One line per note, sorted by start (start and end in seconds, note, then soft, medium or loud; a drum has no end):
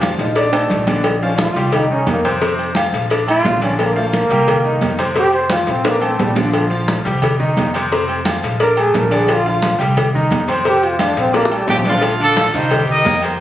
0.00 0.13 F2 medium
0.00 0.29 F3 medium
0.00 0.15 F4 medium
0.00 0.30 F4 medium
0.00 0.15 F5 medium
0.00 0.30 F5 medium
0.00 cowbell medium
0.00 high conga loud
0.00 low timbale medium
0.00 low agogo medium
0.18 0.66 A#1 medium
0.18 0.27 D#4 medium
0.18 0.28 D#5 medium
0.18 cowbell medium
0.18 high conga soft
0.35 0.50 D4 medium
0.35 0.85 D4 medium
0.35 0.49 D5 medium
0.35 0.85 D5 medium
0.35 0.50 D6 medium
0.35 cowbell loud
0.35 high conga soft
0.35 low agogo medium
0.53 0.82 A3 medium
0.53 0.82 A4 medium
0.53 0.82 A5 medium
0.53 high conga soft
0.53 high timbale loud
0.53 low agogo loud
0.70 1.50 A#1 medium
0.70 cowbell medium
0.70 high conga medium
0.87 1.02 D3 medium
0.87 1.02 D4 medium
0.87 1.02 D5 medium
0.87 cowbell medium
0.87 high conga medium
0.87 low timbale medium
0.87 low agogo medium
1.04 cowbell loud
1.04 high conga soft
1.04 low agogo loud
1.22 1.50 F3 medium
1.22 1.39 C#4 medium
1.22 1.50 F4 medium
1.22 1.50 F5 medium
1.22 high conga soft
1.38 1.77 F4 loud
1.38 cowbell medium
1.38 high conga loud
1.38 low timbale medium
1.38 low agogo medium
1.55 2.03 C2 medium
1.55 1.84 G3 medium
1.55 1.84 G4 medium
1.55 1.84 G5 medium
1.55 cowbell medium
1.55 high conga soft
1.72 1.91 D#4 medium
1.72 cowbell loud
1.72 high conga soft
1.72 low conga medium
1.72 low agogo loud
1.90 2.19 D#3 medium
1.90 2.08 C#4 medium
1.90 2.19 D#4 medium
1.90 2.19 D#5 medium
1.90 high conga soft
2.06 2.87 F2 medium
2.06 cowbell medium
2.06 high conga medium
2.06 low timbale medium
2.06 low agogo medium
2.11 2.26 A#3 loud
2.24 2.39 C3 medium
2.24 2.39 C4 medium
2.24 2.39 C5 medium
2.24 cowbell medium
2.24 high conga soft
2.24 low agogo loud
2.41 2.70 C3 medium
2.41 2.70 C4 medium
2.41 2.70 C5 medium
2.41 cowbell loud
2.41 high conga soft
2.59 high conga soft
2.59 low agogo medium
2.75 3.04 F3 medium
2.75 3.04 F4 medium
2.75 3.05 F5 medium
2.75 cowbell medium
2.75 high conga loud
2.75 low timbale medium
2.75 low agogo loud
2.93 3.41 A#1 medium
2.93 cowbell medium
2.93 high conga soft
3.10 3.25 D4 medium
3.10 3.25 D5 medium
3.10 3.25 D6 medium
3.10 cowbell loud
3.10 high conga soft
3.10 low agogo medium
3.27 3.55 A3 medium
3.27 3.62 F4 loud
3.27 3.56 A4 medium
3.27 3.56 A5 medium
3.27 high conga soft
3.27 low agogo loud
3.44 4.25 A#1 medium
3.44 cowbell medium
3.44 high conga medium
3.44 low timbale loud
3.61 3.90 D3 medium
3.61 3.83 C#4 medium
3.61 3.90 D4 medium
3.61 3.90 D5 medium
3.61 cowbell medium
3.61 high conga medium
3.61 low agogo medium
3.79 3.96 A#3 loud
3.79 cowbell loud
3.79 high conga soft
3.79 low agogo loud
3.96 4.24 F3 medium
3.96 4.97 A#3 loud
3.96 4.24 F4 medium
3.96 4.24 F5 medium
3.96 high conga soft
4.13 cowbell medium
4.13 high conga loud
4.13 low timbale medium
4.13 low agogo medium
4.30 4.78 C2 loud
4.30 4.58 G3 medium
4.30 4.59 G4 medium
4.30 4.59 G5 medium
4.30 cowbell medium
4.30 high conga soft
4.48 cowbell loud
4.48 high conga soft
4.48 low conga medium
4.48 low agogo loud
4.64 4.93 D#3 medium
4.64 4.93 D#4 medium
4.64 4.93 D#5 medium
4.64 high conga soft
4.81 5.62 F2 loud
4.81 cowbell medium
4.81 high conga loud
4.81 low timbale medium
4.81 low agogo medium
4.99 5.13 C3 medium
4.99 5.13 C4 medium
4.99 5.13 C5 medium
4.99 cowbell medium
4.99 high conga soft
4.99 low agogo medium
5.15 5.44 C3 medium
5.15 5.44 C4 medium
5.15 5.33 G4 loud
5.15 5.44 C5 medium
5.15 cowbell loud
5.15 high conga soft
5.33 5.53 C5 medium
5.33 high conga soft
5.33 low agogo medium
5.50 5.79 F3 medium
5.50 5.79 F4 medium
5.50 5.72 F4 medium
5.50 5.80 F5 medium
5.50 cowbell medium
5.50 high conga loud
5.50 low timbale medium
5.50 low agogo loud
5.67 6.15 A#1 loud
5.67 5.89 C4 medium
5.67 cowbell medium
5.67 high conga soft
5.85 6.06 A#3 medium
5.85 5.99 D4 medium
5.85 5.99 D5 medium
5.85 5.99 D6 medium
5.85 cowbell loud
5.85 high conga soft
5.85 high timbale medium
5.85 low agogo medium
6.01 6.29 A3 medium
6.01 6.22 C4 medium
6.01 6.30 A4 medium
6.01 6.30 A5 medium
6.01 high conga soft
6.01 low agogo loud
6.19 7.00 A#1 loud
6.19 6.38 G3 medium
6.19 cowbell medium
6.19 high conga medium
6.19 low timbale medium
6.36 6.64 D3 medium
6.36 7.37 F3 loud
6.36 6.64 D4 medium
6.36 6.65 D5 medium
6.36 cowbell medium
6.36 high conga medium
6.36 low timbale medium
6.36 low agogo medium
6.53 cowbell loud
6.53 high conga soft
6.53 low agogo loud
6.70 6.99 F3 medium
6.70 6.99 F4 medium
6.70 6.99 F5 medium
6.70 high conga soft
6.88 cowbell medium
6.88 high conga loud
6.88 low timbale medium
6.88 low agogo medium
7.04 7.53 C2 loud
7.04 7.33 G3 medium
7.04 7.33 G4 medium
7.04 7.34 G5 medium
7.04 cowbell medium
7.04 high conga soft
7.22 cowbell loud
7.22 high conga soft
7.22 low conga medium
7.22 low agogo loud
7.40 7.68 D#3 medium
7.40 7.68 D#4 medium
7.40 7.68 D#5 medium
7.40 high conga soft
7.40 low conga medium
7.57 8.37 F2 loud
7.57 cowbell medium
7.57 high conga medium
7.57 low timbale medium
7.57 low agogo medium
7.74 7.89 C3 medium
7.74 7.89 C4 medium
7.74 7.89 C5 medium
7.74 cowbell medium
7.74 high conga soft
7.74 low agogo loud
7.92 8.20 C3 medium
7.92 8.20 C4 medium
7.92 8.20 C5 medium
7.92 cowbell loud
7.92 high conga soft
8.09 high conga soft
8.09 low agogo medium
8.25 8.53 F3 medium
8.25 8.54 F4 medium
8.25 8.54 F5 medium
8.25 cowbell medium
8.25 high conga loud
8.25 low timbale medium
8.25 low agogo medium
8.43 8.91 A#1 loud
8.43 cowbell medium
8.43 high conga soft
8.60 8.74 D4 medium
8.60 8.78 A#4 loud
8.60 8.74 D5 medium
8.60 8.74 D6 medium
8.60 cowbell loud
8.60 high conga soft
8.60 low agogo medium
8.77 9.05 A3 medium
8.77 8.99 G#4 loud
8.77 9.05 A4 medium
8.77 9.05 A5 medium
8.77 high conga soft
8.77 low agogo loud
8.94 9.74 A#1 loud
8.94 9.16 A#4 loud
8.94 cowbell medium
8.94 high conga medium
8.94 low timbale medium
9.11 9.39 D3 medium
9.11 9.39 D4 medium
9.11 9.33 G#4 medium
9.11 9.40 D5 loud
9.11 cowbell medium
9.11 low agogo medium
9.28 9.47 F4 loud
9.28 cowbell loud
9.28 high conga soft
9.28 low agogo loud
9.45 9.74 F3 medium
9.45 9.74 F4 medium
9.45 9.80 F4 loud
9.45 9.74 F5 medium
9.45 high conga soft
9.62 cowbell medium
9.62 high conga loud
9.62 low timbale medium
9.62 low agogo medium
9.79 10.27 C2 medium
9.79 10.07 G3 medium
9.79 10.08 G4 medium
9.79 10.08 G5 medium
9.79 cowbell medium
9.79 high conga soft
9.97 cowbell loud
9.97 high conga soft
9.97 low conga medium
9.97 low agogo loud
10.14 10.43 D#3 medium
10.14 10.43 D#4 medium
10.14 10.43 D#5 medium
10.14 high conga soft
10.14 low conga medium
10.30 11.11 F2 loud
10.30 cowbell medium
10.30 high conga medium
10.30 low timbale medium
10.30 low agogo loud
10.48 10.62 C3 medium
10.48 10.62 C4 medium
10.48 10.63 C5 medium
10.48 10.66 C5 medium
10.48 cowbell medium
10.48 high conga soft
10.48 low agogo loud
10.65 10.94 C3 medium
10.65 10.94 C4 medium
10.65 10.85 G4 loud
10.65 10.94 C5 medium
10.65 cowbell loud
10.65 high conga soft
10.83 11.04 F4 medium
10.83 high conga soft
10.83 low agogo medium
10.99 11.28 F3 medium
10.99 11.18 D4 medium
10.99 11.28 F4 medium
10.99 11.28 F5 medium
10.99 cowbell medium
10.99 high conga loud
10.99 low timbale medium
10.99 low agogo loud
11.16 11.65 A#1 medium
11.16 11.35 C4 medium
11.16 cowbell medium
11.16 high conga soft
11.33 11.54 A#3 loud
11.33 11.48 D4 medium
11.33 11.48 D5 medium
11.33 11.48 D6 medium
11.33 cowbell loud
11.33 high bongo medium
11.33 high conga soft
11.33 low agogo medium
11.45 high bongo loud
11.51 11.70 G3 medium
11.51 11.79 A3 medium
11.51 11.79 A4 medium
11.51 11.80 A5 medium
11.51 high conga soft
11.51 low agogo loud
11.68 12.48 A#1 loud
11.68 11.85 F3 loud
11.68 11.77 G4 medium
11.68 cowbell medium
11.68 low bongo medium
11.68 high conga medium
11.68 low timbale medium
11.79 low bongo medium
11.85 12.00 D3 medium
11.85 12.03 F3 medium
11.85 12.19 A3 medium
11.85 12.00 D4 medium
11.85 12.19 D4 medium
11.85 12.19 F4 medium
11.85 12.01 D5 medium
11.85 cowbell medium
11.85 high conga medium
11.85 low agogo medium
11.91 low bongo medium
12.02 cowbell loud
12.02 high conga soft
12.02 low agogo loud
12.20 12.34 D3 loud
12.20 12.35 D4 loud
12.20 12.69 D4 medium
12.20 12.69 F4 medium
12.20 12.53 A4 loud
12.20 12.35 D5 loud
12.20 high conga soft
12.36 12.51 F3 medium
12.36 12.52 F4 medium
12.36 12.52 F5 medium
12.36 cowbell medium
12.36 high conga loud
12.36 low timbale medium
12.36 low agogo medium
12.54 13.02 C2 loud
12.54 12.69 D#3 loud
12.54 12.69 D#4 medium
12.54 13.20 D#4 medium
12.54 12.89 G4 medium
12.54 12.89 C5 loud
12.54 12.69 D#5 medium
12.54 cowbell medium
12.54 high conga soft
12.71 12.99 G3 medium
12.71 13.00 G4 medium
12.71 13.00 G5 medium
12.71 cowbell loud
12.71 high conga soft
12.71 low conga medium
12.71 low agogo loud
12.88 13.37 G4 medium
12.88 13.37 A#4 medium
12.88 13.21 D#5 loud
12.88 high conga soft
12.88 low conga medium
13.05 13.40 F2 medium
13.05 13.33 A#3 medium
13.05 13.34 A#4 medium
13.05 13.34 A#5 medium
13.05 cowbell medium
13.05 high conga medium
13.05 low timbale loud
13.05 low agogo loud
13.22 13.39 C5 loud
13.22 cowbell medium
13.22 high conga soft
13.22 low agogo loud